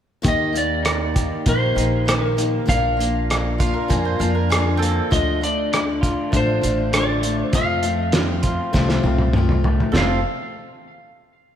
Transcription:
0.22 D#2 D#3 A#3 D#4 G4, kick, closed hi-hat
0.28 D#5
0.53 A#3 D#4 G4, closed hi-hat
0.58 D5
0.83 D#4, cross-stick, closed hi-hat
1.14 A#3 D#4 G4, kick, closed hi-hat
1.46 A#1 D#3 A#3 D#4 G4 C5, kick, closed hi-hat
1.75 A#1 A#3 D#4 G4, closed hi-hat
2.06 D#3 A#3 D#4 G4 A#4, cross-stick, closed hi-hat
2.37 A#3 D#4 G4, closed hi-hat
2.66 A#1 A#2 F3 A#3 D4 F4 F5, kick, closed hi-hat
2.97 A#3 D4 F4, closed hi-hat
3.30 D4, cross-stick, closed hi-hat
3.58 A#3 D4 F4 F5, kick, closed hi-hat
3.74 A#4
3.88 F2 A#2 F3 A#3 D4 F4 G#4, kick, closed hi-hat
4.05 C5
4.19 F2 A#3 D4 F4 F5, closed hi-hat
4.35 A#4
4.49 D3 F3 A#3 D4 F4 G#4, cross-stick, closed hi-hat
4.77 C4 A4
4.82 A#3, closed hi-hat
5.11 D2 D3 F3 A3 F4 D#5, kick, closed hi-hat
5.41 A3 D4 F4 D5, closed hi-hat
5.72 D4, cross-stick, closed hi-hat
6.01 F4, kick, closed hi-hat
6.32 A1 D3 F3 A3 D4 F4, kick, closed hi-hat
6.37 C5
6.61 A1 A3 D4 F4, closed hi-hat
6.92 D3 F3 A3 D4, cross-stick, closed hi-hat
6.96 F4 D5
7.21 A3 F4, closed hi-hat
7.25 A3 D4
7.44 C5
7.53 F2 C3 F3 A3 C4 F4 F5, kick, closed hi-hat
7.83 F3 A3 C4 F4, closed hi-hat
8.12 C4, snare, closed hi-hat
8.42 F4, kick, closed hi-hat
8.73 C2 F2 C3 F3 A3 C4 F4, kick, snare
8.89 snare
9.03 C2 F3 A3 C4 F4, high tom
9.19 high tom
9.33 F3 A3 C4, mid tom
9.38 F4
9.49 mid tom
9.64 A3, floor tom
9.80 floor tom
9.92 F1 F2 C3 A4
9.96 F3 A3 C4 F4 F5, snare

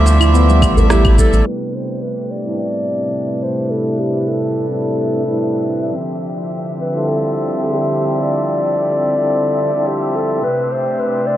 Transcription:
Already playing: D2 C3 F3 G3 E4 G4 D5 E5 C6
0.06 djembe slap, djembe tone, shaker
0.20 F3 E4 G4 C6, claves, shaker
0.34 B3, shaker
0.49 G3, shaker
0.62 A1 A3, kick, claves, shaker
0.77 A4, djembe bass, shaker
0.90 E4 G4, cross-stick, djembe slap, shaker
1.05 kick, djembe tone, claves, shaker
1.18 A4, kick, shaker
1.33 A1, shaker
1.46 C3 A3 D4 G4 B4 E5, closed hi-hat
1.75 C5
1.89 closed hi-hat
2.03 B4, shaker
2.17 closed hi-hat
2.31 D5, shaker
2.43 A2 G3 C4 D4 E4, closed hi-hat, shaker
2.47 B4
2.58 D5, closed hi-hat
2.87 shaker
3.01 closed hi-hat
3.14 closed hi-hat, shaker
3.43 C5, shaker
3.57 closed hi-hat, shaker
3.70 A4, closed hi-hat, shaker
3.85 closed hi-hat
3.99 G4, shaker
4.13 closed hi-hat, shaker
4.27 A4, closed hi-hat, shaker
4.41 closed hi-hat, shaker
4.55 shaker
4.68 A2 G3 C4 D4 E4 B4, closed hi-hat
4.83 closed hi-hat, shaker
5.11 shaker
5.23 A2 G3 C4 D4 E4, closed hi-hat, shaker
5.27 B4
5.39 closed hi-hat, shaker
5.54 shaker
5.68 shaker
5.82 closed hi-hat, shaker
5.95 D3 F3 C4 G4 E5, closed hi-hat, shaker
6.10 closed hi-hat, shaker
6.24 shaker
6.38 closed hi-hat, shaker
6.51 closed hi-hat, shaker
6.66 closed hi-hat, shaker
6.80 B4, shaker
6.91 D3 G3 C4 E4 F4 A4, closed hi-hat, shaker
7.07 A4, closed hi-hat, shaker
7.22 closed hi-hat, shaker
7.36 shaker
7.50 closed hi-hat, shaker
7.64 G4, closed hi-hat, shaker
7.79 shaker
7.92 shaker
8.06 closed hi-hat, shaker
8.19 D5, closed hi-hat, shaker
8.34 closed hi-hat, shaker
8.48 shaker
8.62 closed hi-hat, shaker
8.75 closed hi-hat, shaker
8.90 closed hi-hat, shaker
9.04 shaker
9.17 D3 G3 C4 E4 F4 A4, closed hi-hat, shaker
9.31 closed hi-hat, shaker
9.46 closed hi-hat, shaker
9.60 shaker
9.72 D3 G3 C4 E4 F4, closed hi-hat, shaker
9.76 A4
9.87 G4, closed hi-hat, shaker
10.02 shaker
10.15 A4, shaker
10.30 closed hi-hat, shaker
10.43 C3 A3 D4 B4 C5, closed hi-hat, shaker
10.58 closed hi-hat, shaker
10.71 C5, shaker
10.86 closed hi-hat, shaker
10.99 B4, closed hi-hat, shaker
11.14 closed hi-hat, shaker
11.27 D5, shaker

